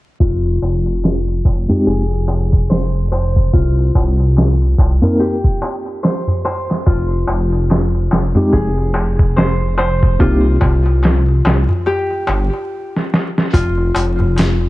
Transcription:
0.20 0.58 F1 medium
0.20 2.72 F4 medium
0.20 kick medium
0.20 closed hi-hat medium
0.20 darbuka tek soft
0.45 darbuka tek soft
0.62 1.42 F1 medium
0.62 closed hi-hat medium
0.62 darbuka tek medium
0.86 darbuka tek soft
1.03 snare loud
1.03 closed hi-hat medium
1.03 darbuka tek soft
1.28 darbuka tek soft
1.45 1.67 F1 medium
1.45 kick medium
1.45 closed hi-hat medium
1.45 darbuka tek medium
1.69 2.01 G#3 medium
1.69 2.01 C4 medium
1.69 2.01 D#4 medium
1.69 2.02 G4 medium
1.69 darbuka tek soft
1.69 darbuka dum medium
1.87 3.50 F1 medium
1.87 4.14 G#4 medium
1.87 closed hi-hat medium
1.87 darbuka tek soft
2.10 darbuka tek soft
2.28 open hi-hat medium
2.28 darbuka tek medium
2.53 kick medium
2.53 darbuka tek soft
2.70 3.11 C5 medium
2.70 snare loud
2.70 closed hi-hat medium
2.70 darbuka tek soft
2.95 darbuka tek soft
3.12 5.10 C5 medium
3.12 darbuka tek medium
3.36 kick medium
3.36 darbuka tek soft
3.53 3.91 C2 medium
3.53 6.06 F4 medium
3.53 kick medium
3.53 closed hi-hat medium
3.53 darbuka tek soft
3.79 darbuka tek soft
3.95 4.75 C2 medium
3.95 kick medium
3.95 darbuka tek medium
4.20 darbuka tek soft
4.37 snare loud
4.37 closed hi-hat medium
4.37 darbuka tek soft
4.62 darbuka tek soft
4.78 5.00 C2 loud
4.78 kick medium
4.78 closed hi-hat medium
4.78 darbuka tek medium
5.02 5.34 A#3 medium
5.02 5.34 C4 medium
5.02 5.35 D#4 medium
5.02 5.35 A#4 medium
5.02 darbuka tek soft
5.02 darbuka dum medium
5.20 7.55 G4 medium
5.20 closed hi-hat medium
5.20 darbuka tek soft
5.44 kick medium
5.44 darbuka tek soft
5.62 closed hi-hat medium
5.62 darbuka tek medium
5.86 darbuka tek soft
6.03 6.44 C5 medium
6.03 snare loud
6.03 closed hi-hat medium
6.03 darbuka tek soft
6.27 darbuka tek soft
6.27 darbuka dum medium
6.45 8.43 C5 medium
6.45 closed hi-hat medium
6.45 darbuka tek medium
6.70 snare soft
6.70 darbuka tek soft
6.86 7.25 F1 medium
6.86 9.39 F4 medium
6.86 kick medium
6.86 closed hi-hat medium
6.86 darbuka tek medium
7.10 darbuka tek soft
7.28 8.09 F1 medium
7.28 closed hi-hat medium
7.28 darbuka tek medium
7.52 darbuka tek soft
7.70 snare loud
7.70 closed hi-hat medium
7.70 darbuka tek soft
7.94 darbuka tek soft
8.11 8.33 F1 loud
8.11 snare loud
8.11 closed hi-hat medium
8.11 darbuka tek medium
8.35 8.67 G#3 medium
8.35 8.68 C4 medium
8.35 8.68 D#4 medium
8.35 8.68 G4 medium
8.35 darbuka tek soft
8.35 darbuka dum medium
8.53 10.17 F1 medium
8.53 10.80 G#4 medium
8.53 kick medium
8.53 closed hi-hat medium
8.53 darbuka tek soft
8.78 darbuka tek soft
8.94 open hi-hat medium
8.94 darbuka tek medium
9.19 kick medium
9.19 darbuka tek soft
9.36 9.78 C5 medium
9.36 snare loud
9.36 closed hi-hat medium
9.36 darbuka tek soft
9.60 darbuka tek soft
9.78 11.76 C5 medium
9.78 closed hi-hat medium
9.78 darbuka tek medium
10.03 kick medium
10.03 darbuka tek soft
10.19 10.58 C2 loud
10.19 10.54 A#3 medium
10.19 10.55 C4 medium
10.19 10.55 D#4 medium
10.19 12.72 F4 medium
10.19 10.55 G4 medium
10.19 kick loud
10.19 closed hi-hat medium
10.19 darbuka tek medium
10.44 darbuka tek soft
10.61 11.42 C2 medium
10.61 kick medium
10.61 closed hi-hat medium
10.61 darbuka tek medium
10.86 darbuka tek soft
11.03 snare loud
11.03 closed hi-hat medium
11.03 darbuka tek soft
11.28 darbuka tek soft
11.45 11.67 C2 medium
11.45 snare loud
11.45 closed hi-hat medium
11.45 darbuka tek medium
11.69 darbuka tek soft
11.69 darbuka dum medium
11.86 14.22 G4 medium
11.86 darbuka tek soft
12.11 darbuka tek soft
12.27 12.50 G1 loud
12.27 closed hi-hat medium
12.27 darbuka tek medium
12.53 darbuka tek soft
12.96 snare soft
13.14 snare medium
13.38 snare medium
13.53 13.91 F1 loud
13.53 14.69 F4 medium
13.53 kick medium
13.53 closed hi-hat medium
13.53 darbuka tek medium
13.77 darbuka tek soft
13.95 14.69 F1 medium
13.95 closed hi-hat medium
13.95 darbuka tek medium
14.19 darbuka tek soft
14.19 darbuka dum medium
14.36 snare loud
14.36 closed hi-hat medium
14.36 darbuka tek soft
14.61 darbuka tek soft

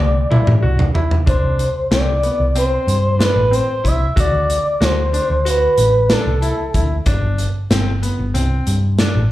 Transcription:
0.00 0.24 C2 medium
0.00 0.95 D5 medium
0.31 0.50 E4 medium
0.31 mid tom medium
0.47 0.59 A2 medium
0.47 mid tom medium
0.62 0.87 C2 medium
0.62 0.82 F#4 medium
0.79 floor tom medium
0.94 1.14 E4 medium
0.94 floor tom medium
1.11 floor tom medium
1.26 1.39 C2 medium
1.26 1.64 D4 medium
1.26 1.88 C5 medium
1.26 kick medium
1.26 closed hi-hat medium
1.43 1.68 C2 medium
1.59 closed hi-hat medium
1.91 2.28 C2 medium
1.91 2.10 C4 medium
1.91 2.52 D5 loud
1.91 snare medium
1.91 closed hi-hat medium
2.23 2.42 B3 medium
2.23 closed hi-hat soft
2.40 2.76 C2 medium
2.55 2.93 C4 medium
2.55 3.23 C5 loud
2.55 closed hi-hat medium
2.87 3.24 G2 medium
2.87 closed hi-hat medium
3.19 3.38 D4 medium
3.19 3.55 B4 medium
3.19 snare medium
3.19 closed hi-hat medium
3.36 3.60 A1 medium
3.51 3.70 C4 medium
3.51 3.89 C5 medium
3.51 closed hi-hat soft
3.84 4.09 C2 medium
3.84 4.03 E4 medium
3.84 4.18 E5 loud
3.84 kick medium
3.84 closed hi-hat medium
4.16 4.29 D2 medium
4.16 4.54 F#4 medium
4.16 kick medium
4.16 closed hi-hat medium
4.20 4.85 D5 loud
4.32 4.57 D2 medium
4.50 closed hi-hat medium
4.81 5.17 D2 medium
4.81 5.00 F#4 medium
4.81 5.50 C5 loud
4.81 snare medium
4.81 closed hi-hat medium
5.13 5.32 D4 medium
5.13 closed hi-hat medium
5.30 5.66 D2 medium
5.45 5.83 F#4 medium
5.45 6.14 B4 loud
5.45 closed hi-hat medium
5.78 6.14 A1 medium
5.78 closed hi-hat medium
6.10 6.29 D4 medium
6.10 6.84 A4 medium
6.10 snare loud
6.10 closed hi-hat medium
6.26 6.50 C2 medium
6.42 6.61 E4 medium
6.42 closed hi-hat medium
6.74 6.99 D2 medium
6.74 6.93 E4 medium
6.74 kick medium
6.74 closed hi-hat medium
7.06 7.18 G1 medium
7.06 7.44 D4 medium
7.06 kick medium
7.06 closed hi-hat medium
7.22 7.47 G1 medium
7.38 closed hi-hat medium
7.70 8.07 G1 medium
7.70 7.90 C4 medium
7.70 snare medium
7.70 closed hi-hat medium
8.02 8.22 B3 medium
8.02 closed hi-hat soft
8.19 8.31 G1 medium
8.34 8.59 C2 medium
8.34 8.72 C4 medium
8.34 closed hi-hat medium
8.67 9.04 G2 medium
8.67 closed hi-hat medium
8.99 9.18 D4 medium
8.99 snare loud
8.99 closed hi-hat medium
9.15 9.32 A1 medium

